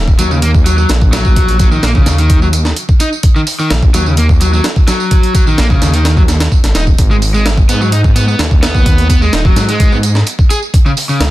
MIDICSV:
0, 0, Header, 1, 4, 480
1, 0, Start_track
1, 0, Key_signature, -6, "minor"
1, 0, Tempo, 468750
1, 1395, Time_signature, 4, 2, 24, 8
1, 11577, End_track
2, 0, Start_track
2, 0, Title_t, "Overdriven electric guitar"
2, 0, Program_c, 0, 29
2, 192, Note_on_c, 0, 54, 97
2, 305, Note_off_c, 0, 54, 0
2, 318, Note_on_c, 0, 49, 72
2, 395, Note_off_c, 0, 49, 0
2, 434, Note_on_c, 0, 58, 78
2, 516, Note_off_c, 0, 58, 0
2, 671, Note_on_c, 0, 54, 73
2, 785, Note_off_c, 0, 54, 0
2, 797, Note_on_c, 0, 54, 75
2, 908, Note_off_c, 0, 54, 0
2, 1150, Note_on_c, 0, 54, 100
2, 1621, Note_off_c, 0, 54, 0
2, 1633, Note_on_c, 0, 54, 76
2, 1751, Note_off_c, 0, 54, 0
2, 1757, Note_on_c, 0, 51, 94
2, 1863, Note_off_c, 0, 51, 0
2, 1874, Note_on_c, 0, 58, 83
2, 1956, Note_off_c, 0, 58, 0
2, 1998, Note_on_c, 0, 49, 74
2, 2226, Note_off_c, 0, 49, 0
2, 2240, Note_on_c, 0, 51, 97
2, 2467, Note_off_c, 0, 51, 0
2, 2480, Note_on_c, 0, 54, 73
2, 2526, Note_off_c, 0, 54, 0
2, 3079, Note_on_c, 0, 63, 103
2, 3158, Note_off_c, 0, 63, 0
2, 3439, Note_on_c, 0, 51, 97
2, 3485, Note_off_c, 0, 51, 0
2, 3682, Note_on_c, 0, 51, 96
2, 3791, Note_off_c, 0, 51, 0
2, 4039, Note_on_c, 0, 54, 101
2, 4148, Note_off_c, 0, 54, 0
2, 4163, Note_on_c, 0, 49, 74
2, 4238, Note_off_c, 0, 49, 0
2, 4282, Note_on_c, 0, 58, 76
2, 4360, Note_off_c, 0, 58, 0
2, 4520, Note_on_c, 0, 54, 73
2, 4632, Note_off_c, 0, 54, 0
2, 4644, Note_on_c, 0, 54, 75
2, 4752, Note_off_c, 0, 54, 0
2, 4997, Note_on_c, 0, 54, 99
2, 5464, Note_off_c, 0, 54, 0
2, 5480, Note_on_c, 0, 54, 73
2, 5594, Note_off_c, 0, 54, 0
2, 5602, Note_on_c, 0, 51, 99
2, 5705, Note_off_c, 0, 51, 0
2, 5721, Note_on_c, 0, 58, 85
2, 5799, Note_off_c, 0, 58, 0
2, 5846, Note_on_c, 0, 49, 75
2, 6070, Note_off_c, 0, 49, 0
2, 6082, Note_on_c, 0, 51, 100
2, 6308, Note_off_c, 0, 51, 0
2, 6323, Note_on_c, 0, 54, 76
2, 6367, Note_off_c, 0, 54, 0
2, 6918, Note_on_c, 0, 63, 101
2, 6998, Note_off_c, 0, 63, 0
2, 7279, Note_on_c, 0, 56, 100
2, 7325, Note_off_c, 0, 56, 0
2, 7518, Note_on_c, 0, 56, 95
2, 7629, Note_off_c, 0, 56, 0
2, 7875, Note_on_c, 0, 59, 99
2, 7986, Note_off_c, 0, 59, 0
2, 7998, Note_on_c, 0, 54, 74
2, 8075, Note_off_c, 0, 54, 0
2, 8114, Note_on_c, 0, 63, 77
2, 8196, Note_off_c, 0, 63, 0
2, 8353, Note_on_c, 0, 59, 73
2, 8462, Note_off_c, 0, 59, 0
2, 8475, Note_on_c, 0, 59, 73
2, 8587, Note_off_c, 0, 59, 0
2, 8831, Note_on_c, 0, 59, 102
2, 9301, Note_off_c, 0, 59, 0
2, 9314, Note_on_c, 0, 59, 73
2, 9432, Note_off_c, 0, 59, 0
2, 9436, Note_on_c, 0, 56, 96
2, 9542, Note_off_c, 0, 56, 0
2, 9556, Note_on_c, 0, 63, 83
2, 9637, Note_off_c, 0, 63, 0
2, 9682, Note_on_c, 0, 54, 79
2, 9908, Note_off_c, 0, 54, 0
2, 9920, Note_on_c, 0, 56, 94
2, 10147, Note_off_c, 0, 56, 0
2, 10160, Note_on_c, 0, 59, 74
2, 10205, Note_off_c, 0, 59, 0
2, 10759, Note_on_c, 0, 68, 106
2, 10838, Note_off_c, 0, 68, 0
2, 11120, Note_on_c, 0, 49, 100
2, 11165, Note_off_c, 0, 49, 0
2, 11358, Note_on_c, 0, 49, 96
2, 11469, Note_off_c, 0, 49, 0
2, 11577, End_track
3, 0, Start_track
3, 0, Title_t, "Detuned saw bass"
3, 0, Program_c, 1, 39
3, 0, Note_on_c, 1, 27, 100
3, 157, Note_off_c, 1, 27, 0
3, 193, Note_on_c, 1, 39, 99
3, 877, Note_off_c, 1, 39, 0
3, 914, Note_on_c, 1, 34, 94
3, 1837, Note_off_c, 1, 34, 0
3, 1872, Note_on_c, 1, 34, 77
3, 2067, Note_off_c, 1, 34, 0
3, 2111, Note_on_c, 1, 39, 102
3, 2795, Note_off_c, 1, 39, 0
3, 3794, Note_on_c, 1, 34, 81
3, 3987, Note_off_c, 1, 34, 0
3, 4032, Note_on_c, 1, 39, 98
3, 4716, Note_off_c, 1, 39, 0
3, 5599, Note_on_c, 1, 34, 43
3, 5692, Note_off_c, 1, 34, 0
3, 5717, Note_on_c, 1, 34, 75
3, 5909, Note_off_c, 1, 34, 0
3, 5954, Note_on_c, 1, 39, 101
3, 6637, Note_off_c, 1, 39, 0
3, 6795, Note_on_c, 1, 32, 85
3, 6890, Note_off_c, 1, 32, 0
3, 6909, Note_on_c, 1, 27, 91
3, 7105, Note_off_c, 1, 27, 0
3, 7153, Note_on_c, 1, 32, 98
3, 7836, Note_off_c, 1, 32, 0
3, 7869, Note_on_c, 1, 44, 103
3, 8554, Note_off_c, 1, 44, 0
3, 8590, Note_on_c, 1, 39, 94
3, 9515, Note_off_c, 1, 39, 0
3, 9551, Note_on_c, 1, 27, 77
3, 9746, Note_off_c, 1, 27, 0
3, 9790, Note_on_c, 1, 44, 104
3, 10475, Note_off_c, 1, 44, 0
3, 11468, Note_on_c, 1, 37, 82
3, 11577, Note_off_c, 1, 37, 0
3, 11577, End_track
4, 0, Start_track
4, 0, Title_t, "Drums"
4, 77, Note_on_c, 9, 54, 21
4, 78, Note_on_c, 9, 36, 97
4, 180, Note_off_c, 9, 36, 0
4, 180, Note_off_c, 9, 54, 0
4, 191, Note_on_c, 9, 42, 65
4, 193, Note_on_c, 9, 54, 74
4, 293, Note_off_c, 9, 42, 0
4, 295, Note_off_c, 9, 54, 0
4, 319, Note_on_c, 9, 54, 31
4, 421, Note_off_c, 9, 54, 0
4, 432, Note_on_c, 9, 42, 88
4, 435, Note_on_c, 9, 54, 43
4, 535, Note_off_c, 9, 42, 0
4, 538, Note_off_c, 9, 54, 0
4, 556, Note_on_c, 9, 54, 22
4, 558, Note_on_c, 9, 36, 93
4, 659, Note_off_c, 9, 54, 0
4, 661, Note_off_c, 9, 36, 0
4, 672, Note_on_c, 9, 54, 71
4, 675, Note_on_c, 9, 42, 65
4, 775, Note_off_c, 9, 54, 0
4, 778, Note_off_c, 9, 42, 0
4, 797, Note_on_c, 9, 54, 32
4, 900, Note_off_c, 9, 54, 0
4, 910, Note_on_c, 9, 54, 42
4, 916, Note_on_c, 9, 38, 108
4, 916, Note_on_c, 9, 42, 82
4, 1013, Note_off_c, 9, 54, 0
4, 1019, Note_off_c, 9, 38, 0
4, 1019, Note_off_c, 9, 42, 0
4, 1037, Note_on_c, 9, 54, 22
4, 1040, Note_on_c, 9, 36, 95
4, 1139, Note_off_c, 9, 54, 0
4, 1142, Note_off_c, 9, 36, 0
4, 1154, Note_on_c, 9, 54, 81
4, 1158, Note_on_c, 9, 38, 104
4, 1158, Note_on_c, 9, 42, 82
4, 1256, Note_off_c, 9, 54, 0
4, 1260, Note_off_c, 9, 38, 0
4, 1260, Note_off_c, 9, 42, 0
4, 1275, Note_on_c, 9, 54, 33
4, 1280, Note_on_c, 9, 36, 88
4, 1378, Note_off_c, 9, 54, 0
4, 1382, Note_off_c, 9, 36, 0
4, 1394, Note_on_c, 9, 54, 41
4, 1397, Note_on_c, 9, 36, 109
4, 1397, Note_on_c, 9, 42, 86
4, 1497, Note_off_c, 9, 54, 0
4, 1499, Note_off_c, 9, 36, 0
4, 1500, Note_off_c, 9, 42, 0
4, 1517, Note_on_c, 9, 54, 22
4, 1521, Note_on_c, 9, 42, 45
4, 1620, Note_off_c, 9, 54, 0
4, 1623, Note_off_c, 9, 42, 0
4, 1632, Note_on_c, 9, 54, 71
4, 1634, Note_on_c, 9, 42, 64
4, 1635, Note_on_c, 9, 36, 91
4, 1734, Note_off_c, 9, 54, 0
4, 1736, Note_off_c, 9, 42, 0
4, 1738, Note_off_c, 9, 36, 0
4, 1756, Note_on_c, 9, 54, 31
4, 1858, Note_off_c, 9, 54, 0
4, 1872, Note_on_c, 9, 54, 41
4, 1874, Note_on_c, 9, 38, 109
4, 1874, Note_on_c, 9, 42, 87
4, 1975, Note_off_c, 9, 54, 0
4, 1976, Note_off_c, 9, 38, 0
4, 1976, Note_off_c, 9, 42, 0
4, 1996, Note_on_c, 9, 54, 21
4, 1998, Note_on_c, 9, 36, 97
4, 2098, Note_off_c, 9, 54, 0
4, 2100, Note_off_c, 9, 36, 0
4, 2111, Note_on_c, 9, 38, 57
4, 2111, Note_on_c, 9, 42, 67
4, 2113, Note_on_c, 9, 54, 75
4, 2214, Note_off_c, 9, 38, 0
4, 2214, Note_off_c, 9, 42, 0
4, 2216, Note_off_c, 9, 54, 0
4, 2236, Note_on_c, 9, 42, 43
4, 2237, Note_on_c, 9, 54, 34
4, 2339, Note_off_c, 9, 42, 0
4, 2339, Note_off_c, 9, 54, 0
4, 2352, Note_on_c, 9, 42, 83
4, 2353, Note_on_c, 9, 36, 105
4, 2354, Note_on_c, 9, 54, 44
4, 2454, Note_off_c, 9, 42, 0
4, 2456, Note_off_c, 9, 36, 0
4, 2456, Note_off_c, 9, 54, 0
4, 2477, Note_on_c, 9, 54, 22
4, 2579, Note_off_c, 9, 54, 0
4, 2591, Note_on_c, 9, 42, 67
4, 2594, Note_on_c, 9, 54, 72
4, 2693, Note_off_c, 9, 42, 0
4, 2696, Note_off_c, 9, 54, 0
4, 2715, Note_on_c, 9, 38, 51
4, 2717, Note_on_c, 9, 54, 32
4, 2817, Note_off_c, 9, 38, 0
4, 2820, Note_off_c, 9, 54, 0
4, 2831, Note_on_c, 9, 42, 74
4, 2834, Note_on_c, 9, 54, 43
4, 2934, Note_off_c, 9, 42, 0
4, 2936, Note_off_c, 9, 54, 0
4, 2957, Note_on_c, 9, 36, 86
4, 2957, Note_on_c, 9, 54, 22
4, 3059, Note_off_c, 9, 36, 0
4, 3059, Note_off_c, 9, 54, 0
4, 3072, Note_on_c, 9, 42, 62
4, 3074, Note_on_c, 9, 54, 80
4, 3175, Note_off_c, 9, 42, 0
4, 3176, Note_off_c, 9, 54, 0
4, 3201, Note_on_c, 9, 54, 33
4, 3303, Note_off_c, 9, 54, 0
4, 3310, Note_on_c, 9, 42, 90
4, 3312, Note_on_c, 9, 36, 109
4, 3318, Note_on_c, 9, 54, 41
4, 3412, Note_off_c, 9, 42, 0
4, 3414, Note_off_c, 9, 36, 0
4, 3420, Note_off_c, 9, 54, 0
4, 3440, Note_on_c, 9, 54, 21
4, 3542, Note_off_c, 9, 54, 0
4, 3552, Note_on_c, 9, 46, 77
4, 3554, Note_on_c, 9, 54, 71
4, 3654, Note_off_c, 9, 46, 0
4, 3657, Note_off_c, 9, 54, 0
4, 3680, Note_on_c, 9, 54, 31
4, 3782, Note_off_c, 9, 54, 0
4, 3794, Note_on_c, 9, 38, 113
4, 3794, Note_on_c, 9, 42, 88
4, 3795, Note_on_c, 9, 54, 40
4, 3896, Note_off_c, 9, 38, 0
4, 3896, Note_off_c, 9, 42, 0
4, 3897, Note_off_c, 9, 54, 0
4, 3917, Note_on_c, 9, 36, 93
4, 3919, Note_on_c, 9, 54, 22
4, 4019, Note_off_c, 9, 36, 0
4, 4022, Note_off_c, 9, 54, 0
4, 4034, Note_on_c, 9, 42, 70
4, 4038, Note_on_c, 9, 54, 73
4, 4136, Note_off_c, 9, 42, 0
4, 4140, Note_off_c, 9, 54, 0
4, 4160, Note_on_c, 9, 54, 31
4, 4262, Note_off_c, 9, 54, 0
4, 4272, Note_on_c, 9, 42, 85
4, 4279, Note_on_c, 9, 54, 41
4, 4374, Note_off_c, 9, 42, 0
4, 4381, Note_off_c, 9, 54, 0
4, 4396, Note_on_c, 9, 36, 93
4, 4404, Note_on_c, 9, 54, 22
4, 4499, Note_off_c, 9, 36, 0
4, 4507, Note_off_c, 9, 54, 0
4, 4513, Note_on_c, 9, 42, 67
4, 4522, Note_on_c, 9, 54, 71
4, 4615, Note_off_c, 9, 42, 0
4, 4625, Note_off_c, 9, 54, 0
4, 4642, Note_on_c, 9, 54, 29
4, 4744, Note_off_c, 9, 54, 0
4, 4753, Note_on_c, 9, 38, 116
4, 4753, Note_on_c, 9, 42, 84
4, 4760, Note_on_c, 9, 54, 41
4, 4855, Note_off_c, 9, 38, 0
4, 4855, Note_off_c, 9, 42, 0
4, 4862, Note_off_c, 9, 54, 0
4, 4877, Note_on_c, 9, 36, 92
4, 4880, Note_on_c, 9, 54, 21
4, 4979, Note_off_c, 9, 36, 0
4, 4982, Note_off_c, 9, 54, 0
4, 4992, Note_on_c, 9, 38, 53
4, 4992, Note_on_c, 9, 42, 68
4, 4996, Note_on_c, 9, 54, 76
4, 5095, Note_off_c, 9, 38, 0
4, 5095, Note_off_c, 9, 42, 0
4, 5098, Note_off_c, 9, 54, 0
4, 5119, Note_on_c, 9, 54, 33
4, 5221, Note_off_c, 9, 54, 0
4, 5233, Note_on_c, 9, 54, 38
4, 5234, Note_on_c, 9, 42, 88
4, 5235, Note_on_c, 9, 36, 108
4, 5336, Note_off_c, 9, 42, 0
4, 5336, Note_off_c, 9, 54, 0
4, 5337, Note_off_c, 9, 36, 0
4, 5359, Note_on_c, 9, 42, 43
4, 5359, Note_on_c, 9, 54, 19
4, 5461, Note_off_c, 9, 54, 0
4, 5462, Note_off_c, 9, 42, 0
4, 5474, Note_on_c, 9, 42, 64
4, 5474, Note_on_c, 9, 54, 67
4, 5475, Note_on_c, 9, 36, 90
4, 5577, Note_off_c, 9, 36, 0
4, 5577, Note_off_c, 9, 42, 0
4, 5577, Note_off_c, 9, 54, 0
4, 5600, Note_on_c, 9, 54, 28
4, 5703, Note_off_c, 9, 54, 0
4, 5714, Note_on_c, 9, 38, 112
4, 5714, Note_on_c, 9, 42, 85
4, 5718, Note_on_c, 9, 54, 39
4, 5817, Note_off_c, 9, 38, 0
4, 5817, Note_off_c, 9, 42, 0
4, 5820, Note_off_c, 9, 54, 0
4, 5839, Note_on_c, 9, 36, 92
4, 5840, Note_on_c, 9, 54, 22
4, 5941, Note_off_c, 9, 36, 0
4, 5943, Note_off_c, 9, 54, 0
4, 5957, Note_on_c, 9, 38, 59
4, 5957, Note_on_c, 9, 42, 67
4, 5957, Note_on_c, 9, 54, 70
4, 6059, Note_off_c, 9, 54, 0
4, 6060, Note_off_c, 9, 38, 0
4, 6060, Note_off_c, 9, 42, 0
4, 6078, Note_on_c, 9, 42, 41
4, 6081, Note_on_c, 9, 54, 31
4, 6180, Note_off_c, 9, 42, 0
4, 6184, Note_off_c, 9, 54, 0
4, 6196, Note_on_c, 9, 38, 100
4, 6196, Note_on_c, 9, 42, 75
4, 6199, Note_on_c, 9, 54, 41
4, 6298, Note_off_c, 9, 38, 0
4, 6298, Note_off_c, 9, 42, 0
4, 6301, Note_off_c, 9, 54, 0
4, 6318, Note_on_c, 9, 36, 88
4, 6320, Note_on_c, 9, 54, 20
4, 6420, Note_off_c, 9, 36, 0
4, 6423, Note_off_c, 9, 54, 0
4, 6434, Note_on_c, 9, 38, 51
4, 6434, Note_on_c, 9, 42, 58
4, 6438, Note_on_c, 9, 54, 66
4, 6536, Note_off_c, 9, 38, 0
4, 6536, Note_off_c, 9, 42, 0
4, 6540, Note_off_c, 9, 54, 0
4, 6558, Note_on_c, 9, 38, 103
4, 6558, Note_on_c, 9, 42, 76
4, 6560, Note_on_c, 9, 54, 29
4, 6660, Note_off_c, 9, 38, 0
4, 6660, Note_off_c, 9, 42, 0
4, 6662, Note_off_c, 9, 54, 0
4, 6674, Note_on_c, 9, 36, 83
4, 6675, Note_on_c, 9, 54, 39
4, 6776, Note_off_c, 9, 36, 0
4, 6778, Note_off_c, 9, 54, 0
4, 6798, Note_on_c, 9, 38, 49
4, 6798, Note_on_c, 9, 42, 62
4, 6802, Note_on_c, 9, 54, 21
4, 6900, Note_off_c, 9, 38, 0
4, 6900, Note_off_c, 9, 42, 0
4, 6904, Note_off_c, 9, 54, 0
4, 6911, Note_on_c, 9, 38, 103
4, 6911, Note_on_c, 9, 42, 78
4, 6915, Note_on_c, 9, 54, 71
4, 7014, Note_off_c, 9, 38, 0
4, 7014, Note_off_c, 9, 42, 0
4, 7017, Note_off_c, 9, 54, 0
4, 7037, Note_on_c, 9, 36, 82
4, 7038, Note_on_c, 9, 54, 30
4, 7139, Note_off_c, 9, 36, 0
4, 7140, Note_off_c, 9, 54, 0
4, 7152, Note_on_c, 9, 42, 84
4, 7153, Note_on_c, 9, 36, 111
4, 7157, Note_on_c, 9, 54, 36
4, 7255, Note_off_c, 9, 42, 0
4, 7256, Note_off_c, 9, 36, 0
4, 7259, Note_off_c, 9, 54, 0
4, 7281, Note_on_c, 9, 54, 19
4, 7384, Note_off_c, 9, 54, 0
4, 7394, Note_on_c, 9, 46, 75
4, 7399, Note_on_c, 9, 54, 66
4, 7496, Note_off_c, 9, 46, 0
4, 7501, Note_off_c, 9, 54, 0
4, 7519, Note_on_c, 9, 54, 29
4, 7621, Note_off_c, 9, 54, 0
4, 7636, Note_on_c, 9, 38, 114
4, 7636, Note_on_c, 9, 42, 83
4, 7636, Note_on_c, 9, 54, 37
4, 7738, Note_off_c, 9, 38, 0
4, 7738, Note_off_c, 9, 42, 0
4, 7738, Note_off_c, 9, 54, 0
4, 7757, Note_on_c, 9, 36, 98
4, 7758, Note_on_c, 9, 54, 20
4, 7860, Note_off_c, 9, 36, 0
4, 7861, Note_off_c, 9, 54, 0
4, 7873, Note_on_c, 9, 54, 69
4, 7874, Note_on_c, 9, 42, 69
4, 7975, Note_off_c, 9, 54, 0
4, 7976, Note_off_c, 9, 42, 0
4, 8000, Note_on_c, 9, 54, 30
4, 8103, Note_off_c, 9, 54, 0
4, 8113, Note_on_c, 9, 42, 86
4, 8116, Note_on_c, 9, 54, 40
4, 8215, Note_off_c, 9, 42, 0
4, 8218, Note_off_c, 9, 54, 0
4, 8237, Note_on_c, 9, 36, 93
4, 8240, Note_on_c, 9, 54, 20
4, 8339, Note_off_c, 9, 36, 0
4, 8343, Note_off_c, 9, 54, 0
4, 8354, Note_on_c, 9, 42, 65
4, 8358, Note_on_c, 9, 54, 64
4, 8456, Note_off_c, 9, 42, 0
4, 8461, Note_off_c, 9, 54, 0
4, 8480, Note_on_c, 9, 54, 28
4, 8583, Note_off_c, 9, 54, 0
4, 8593, Note_on_c, 9, 38, 118
4, 8593, Note_on_c, 9, 42, 85
4, 8597, Note_on_c, 9, 54, 41
4, 8696, Note_off_c, 9, 38, 0
4, 8696, Note_off_c, 9, 42, 0
4, 8699, Note_off_c, 9, 54, 0
4, 8717, Note_on_c, 9, 36, 95
4, 8722, Note_on_c, 9, 54, 20
4, 8819, Note_off_c, 9, 36, 0
4, 8824, Note_off_c, 9, 54, 0
4, 8835, Note_on_c, 9, 38, 105
4, 8835, Note_on_c, 9, 42, 80
4, 8840, Note_on_c, 9, 54, 71
4, 8937, Note_off_c, 9, 38, 0
4, 8937, Note_off_c, 9, 42, 0
4, 8942, Note_off_c, 9, 54, 0
4, 8956, Note_on_c, 9, 36, 86
4, 8963, Note_on_c, 9, 54, 31
4, 9058, Note_off_c, 9, 36, 0
4, 9065, Note_off_c, 9, 54, 0
4, 9073, Note_on_c, 9, 36, 111
4, 9073, Note_on_c, 9, 42, 85
4, 9078, Note_on_c, 9, 54, 38
4, 9175, Note_off_c, 9, 36, 0
4, 9175, Note_off_c, 9, 42, 0
4, 9180, Note_off_c, 9, 54, 0
4, 9198, Note_on_c, 9, 42, 43
4, 9200, Note_on_c, 9, 54, 20
4, 9301, Note_off_c, 9, 42, 0
4, 9303, Note_off_c, 9, 54, 0
4, 9314, Note_on_c, 9, 36, 87
4, 9315, Note_on_c, 9, 54, 66
4, 9317, Note_on_c, 9, 42, 65
4, 9417, Note_off_c, 9, 36, 0
4, 9417, Note_off_c, 9, 54, 0
4, 9419, Note_off_c, 9, 42, 0
4, 9441, Note_on_c, 9, 54, 29
4, 9543, Note_off_c, 9, 54, 0
4, 9554, Note_on_c, 9, 38, 114
4, 9554, Note_on_c, 9, 42, 85
4, 9557, Note_on_c, 9, 54, 38
4, 9656, Note_off_c, 9, 38, 0
4, 9656, Note_off_c, 9, 42, 0
4, 9659, Note_off_c, 9, 54, 0
4, 9677, Note_on_c, 9, 36, 97
4, 9680, Note_on_c, 9, 54, 20
4, 9779, Note_off_c, 9, 36, 0
4, 9782, Note_off_c, 9, 54, 0
4, 9793, Note_on_c, 9, 38, 58
4, 9793, Note_on_c, 9, 42, 69
4, 9794, Note_on_c, 9, 54, 69
4, 9896, Note_off_c, 9, 38, 0
4, 9896, Note_off_c, 9, 42, 0
4, 9896, Note_off_c, 9, 54, 0
4, 9919, Note_on_c, 9, 42, 41
4, 9919, Note_on_c, 9, 54, 30
4, 10021, Note_off_c, 9, 42, 0
4, 10021, Note_off_c, 9, 54, 0
4, 10034, Note_on_c, 9, 36, 107
4, 10034, Note_on_c, 9, 42, 87
4, 10034, Note_on_c, 9, 54, 39
4, 10136, Note_off_c, 9, 54, 0
4, 10137, Note_off_c, 9, 36, 0
4, 10137, Note_off_c, 9, 42, 0
4, 10158, Note_on_c, 9, 54, 19
4, 10260, Note_off_c, 9, 54, 0
4, 10273, Note_on_c, 9, 42, 66
4, 10274, Note_on_c, 9, 54, 67
4, 10375, Note_off_c, 9, 42, 0
4, 10377, Note_off_c, 9, 54, 0
4, 10395, Note_on_c, 9, 38, 51
4, 10395, Note_on_c, 9, 54, 29
4, 10498, Note_off_c, 9, 38, 0
4, 10498, Note_off_c, 9, 54, 0
4, 10511, Note_on_c, 9, 54, 40
4, 10515, Note_on_c, 9, 42, 79
4, 10613, Note_off_c, 9, 54, 0
4, 10618, Note_off_c, 9, 42, 0
4, 10637, Note_on_c, 9, 36, 85
4, 10639, Note_on_c, 9, 54, 20
4, 10739, Note_off_c, 9, 36, 0
4, 10741, Note_off_c, 9, 54, 0
4, 10755, Note_on_c, 9, 54, 73
4, 10757, Note_on_c, 9, 42, 64
4, 10857, Note_off_c, 9, 54, 0
4, 10859, Note_off_c, 9, 42, 0
4, 10880, Note_on_c, 9, 54, 30
4, 10982, Note_off_c, 9, 54, 0
4, 10995, Note_on_c, 9, 36, 113
4, 10995, Note_on_c, 9, 54, 37
4, 10998, Note_on_c, 9, 42, 86
4, 11097, Note_off_c, 9, 54, 0
4, 11098, Note_off_c, 9, 36, 0
4, 11100, Note_off_c, 9, 42, 0
4, 11119, Note_on_c, 9, 54, 19
4, 11221, Note_off_c, 9, 54, 0
4, 11232, Note_on_c, 9, 54, 69
4, 11239, Note_on_c, 9, 46, 76
4, 11335, Note_off_c, 9, 54, 0
4, 11341, Note_off_c, 9, 46, 0
4, 11356, Note_on_c, 9, 54, 28
4, 11458, Note_off_c, 9, 54, 0
4, 11472, Note_on_c, 9, 54, 39
4, 11475, Note_on_c, 9, 38, 116
4, 11475, Note_on_c, 9, 42, 88
4, 11575, Note_off_c, 9, 54, 0
4, 11577, Note_off_c, 9, 38, 0
4, 11577, Note_off_c, 9, 42, 0
4, 11577, End_track
0, 0, End_of_file